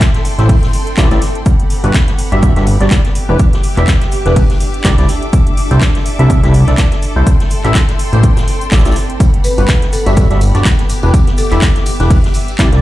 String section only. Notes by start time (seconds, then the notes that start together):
Already playing: A4 G5 C6
1.46 G4 F#5 B5
3.15 E5 D6
5.09 A4 E5
7.27 G5 C6
9.20 G4 F#5 B5
10.90 E5 D6